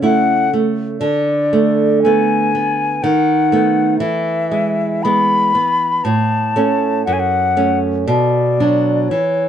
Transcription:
Already playing: C#3 C#4
0.02 A3 E4 F#5
0.53 A3
1.00 D3 D5
1.53 A3
2.03 A3 B3 G#5
2.55 B3
3.03 D#3 F#5
3.52 A3 B3
3.99 E3 E5
4.51 G#3
5.03 G#3 B3 B5
5.55 B3
6.04 A2 A5
6.56 A3 C#4
7.06 F#2 F#5
7.13 G#5
7.20 F#5
7.57 A3 C#4
8.06 B2 D5
8.60 F#3 D4
9.09 E3 C#5

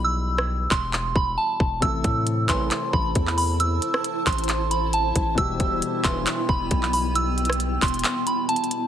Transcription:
Already playing: B1 B2 E3 G3 E4 G4
0.04 E6
0.38 cross-stick
0.71 E1 C6, kick, clap
0.93 clap
1.16 E1 B5, kick
1.38 A5
1.60 E1, kick
1.80 A1 C3 E3 A3 E4 C5 A5 E6, kick, closed hi-hat
1.85 A4
2.04 A2, kick, closed hi-hat
2.27 closed hi-hat
2.49 A1 C2 A2 E3 C6, kick, clap, closed hi-hat
2.71 clap, closed hi-hat
2.93 A1 B5, kick
3.15 E2, kick, closed hi-hat
3.27 clap
3.37 B5, open hi-hat
3.60 E6, closed hi-hat
3.82 closed hi-hat
3.94 cross-stick
4.04 closed hi-hat
4.26 A1 C6, kick, clap, closed hi-hat
4.33 closed hi-hat
4.38 closed hi-hat
4.44 closed hi-hat
4.49 clap, closed hi-hat
4.71 B5, closed hi-hat
4.93 A5, closed hi-hat
5.16 A1, kick, closed hi-hat
5.35 E1 B2 E3 G3 B3 E4 G5 E6, kick, closed hi-hat
5.40 G4
5.60 E1, kick, closed hi-hat
5.82 closed hi-hat
6.04 E1 B1 G2 E3 C6, kick, clap, closed hi-hat
6.27 clap, closed hi-hat
6.49 E1 B5, kick
6.71 B1, kick, closed hi-hat
6.83 clap
6.93 B5, open hi-hat
7.16 E6, closed hi-hat
7.38 closed hi-hat
7.45 closed hi-hat
7.50 cross-stick, closed hi-hat
7.60 closed hi-hat
7.82 E1 C6, kick, clap, closed hi-hat, open hi-hat
7.88 closed hi-hat
7.94 closed hi-hat
7.99 closed hi-hat
8.04 clap, closed hi-hat
8.27 B5, closed hi-hat
8.49 A5, closed hi-hat
8.56 closed hi-hat
8.64 closed hi-hat
8.71 closed hi-hat

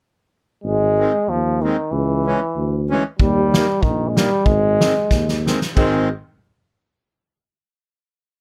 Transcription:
0.64 G#1 G#3
0.99 D#3 G#3 C4
1.28 D#2 F3
1.62 D#3 G#3 C4
1.91 C#2 E3
2.26 E3 G#3 C#4
2.56 D2
2.90 E3 G#3 C#4
3.19 D#2 G3, kick
3.53 D#3 G3 A#3, snare
3.82 A#1 D#3, kick
4.08 G#3
4.16 D#3 G3 A#3, snare
4.45 G#1 G#3, kick
4.80 D#3 G#3 C4, snare
5.11 D#2, kick, snare
5.29 snare
5.46 D#3 G#3 C4, snare
5.62 snare
5.75 G#1 D#3 G#3 C4, kick, crash

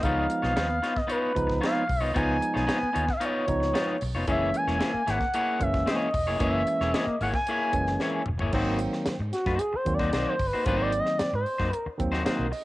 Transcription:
0.02 C#2 E3 G#3 B3 D#4 F4 C#5 F5, kick, closed hi-hat
0.08 F3
0.30 muted clean electric guitar stroke, closed hi-hat
0.42 B1 B3 D#4 F4 C#5 F5, snare
0.56 D#2 B3 D#4 F4 C#5, snare, closed hi-hat
0.70 muted clean electric guitar stroke
0.82 B3 D#4 F4 C#5, snare, closed hi-hat
0.96 D#5, muted clean electric guitar stroke, kick, snare
1.07 B3 D#4 F4 B4 C#5, closed hi-hat
1.34 C#2 F3 G#3 B3 D#4, muted clean electric guitar stroke, kick, closed hi-hat
1.47 muted clean electric guitar stroke, kick, snare
1.61 B3 D#4 F4 C#5 F5, snare, closed hi-hat
1.86 B1, muted clean electric guitar stroke, kick, open hi-hat
2.01 C2 B3 D#4 F4 C#5
2.14 C#2 F3 G#3 B3 D#4 F4 C#5 G#5, kick, closed hi-hat
2.42 closed hi-hat
2.54 B1 B3 D#4 F4 C#5 G#5, snare
2.67 B3 D#4 F4 C#5, snare, closed hi-hat
2.81 muted clean electric guitar stroke, muted fingered electric bass stroke
2.93 D#2 B3 D#4 F4 C#5, closed hi-hat
3.07 F5, muted clean electric guitar stroke, kick, snare
3.13 D#5 F5
3.20 B3 D#4 F4 C#5, closed hi-hat
3.25 C#5
3.47 C#2 F3 G#3 B3 D#4, muted clean electric guitar stroke, kick, closed hi-hat
3.60 muted clean electric guitar stroke, snare
3.74 B3 D#4 F4 C#5, snare, closed hi-hat
4.01 B1, muted clean electric guitar stroke, open hi-hat
4.15 F1 B3 D#4 F4 C#5
4.27 F#1 E3 G#3 A#3 C#4 E4 G#4 C#5 E5, kick, closed hi-hat
4.54 G#5, muted clean electric guitar stroke, closed hi-hat
4.67 E1 A#3 E4 G#4 C#5, snare
4.79 A#3 E4 G#4 C#5, snare, closed hi-hat
4.94 muted clean electric guitar stroke, muted fingered electric bass stroke
5.07 G#1 A#3 E4 G#4 C#5 F#5, snare, closed hi-hat
5.20 muted clean electric guitar stroke, kick, snare
5.34 A#3 E4 G#4 C#5 F#5, closed hi-hat
5.59 F#1 E3 G#3 A#3 C#4 E5, muted clean electric guitar stroke, kick, closed hi-hat
5.74 muted clean electric guitar stroke, kick, snare
5.86 A#3 E4 G#4 C#5 D#5, snare, closed hi-hat
6.13 E1, muted clean electric guitar stroke, kick, open hi-hat
6.26 F1 A#3 E4 G#4 C#5
6.39 F#1 E3 G#3 A#3 C#4 E4 G#4 C#5 E5, kick, closed hi-hat
6.67 muted clean electric guitar stroke, closed hi-hat
6.81 E1 A#3 E4 G#4 C#5, snare
6.94 A#3 E4 G#4 C#5 D#5, snare, closed hi-hat
7.07 muted fingered electric bass stroke, muted clean electric guitar stroke
7.21 G#1 A#3 E4 G#4 C#5 F#5, open hi-hat
7.33 G#5, muted clean electric guitar stroke, kick, snare
7.47 A#3 E4 G#4 C#5, closed hi-hat
7.72 F#1 E3 G#3 A#3 C#4, muted clean electric guitar stroke, kick, closed hi-hat
7.87 muted clean electric guitar stroke, snare
8.00 A#3 E4 G#4 C#5, snare
8.26 E1, muted clean electric guitar stroke, mid tom
8.39 G1 A#3 E4 G#4 C#5, floor tom
8.52 G#1 D#3 F#3 A#3 C4 D#4 F#4 C5, kick, crash
8.79 closed hi-hat
8.93 muted clean electric guitar stroke, snare
9.06 muted fingered electric bass stroke, muted clean electric guitar stroke, snare, closed hi-hat
9.19 G#2, muted clean electric guitar stroke
9.32 F#4, snare, closed hi-hat
9.46 F#2 A#3 D#4 F#4 C5, kick, snare
9.59 G#4, muted clean electric guitar stroke, closed hi-hat
9.73 C5, muted clean electric guitar stroke, muted fingered electric bass stroke
9.86 D#2 D#3 F#3 A#3 C4, kick, closed hi-hat
9.94 D5
9.99 A#3 D#4 F#4 C5, kick, snare
10.13 B1 A#3 D#4 F#4 C5, snare, closed hi-hat
10.29 C5
10.39 G1, muted clean electric guitar stroke, kick, open hi-hat
10.47 B4
10.53 A#3 D#4 F#4 C5
10.64 G#1 D#3 F#3 A#3 C4 D#4 F#4 C5, kick, closed hi-hat
10.68 C5
10.82 D5
10.92 closed hi-hat
10.99 D#5
11.06 muted clean electric guitar stroke, snare
11.18 D5, muted clean electric guitar stroke, muted fingered electric bass stroke, snare, closed hi-hat
11.33 G#2 C5, muted clean electric guitar stroke
11.46 open hi-hat
11.58 F#2 A#3 D#4 F#4 C5, kick, snare
11.73 closed hi-hat
11.86 muted fingered electric bass stroke, muted clean electric guitar stroke
11.98 D#2 D#3 F#3 A#3 C4, kick, closed hi-hat
12.12 A#3 D#4 F#4 C5, snare
12.25 A#3 D#4 F#4 A#4 C5, muted fingered electric bass stroke, snare, closed hi-hat
12.39 B1
12.51 D#5, muted clean electric guitar stroke, open hi-hat

